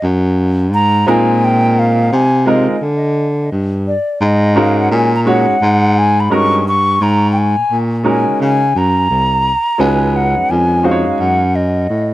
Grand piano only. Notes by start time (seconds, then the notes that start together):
1.06 G#3 C4 D#4 F4 A#4
2.46 G#3 C4 D#4 F4 A#4
4.55 G#3 C#4 D#4 F#4 A#4
5.25 G#3 C#4 D#4 F#4 C#5
6.30 G#3 C#4 D#4 F#4 A#4
8.04 G#3 C#4 D#4 F#4 A#4
9.78 G#3 C#4 D#4 F#4 B4
10.83 G#3 C#4 D#4 F#4 C5
10.91 C#5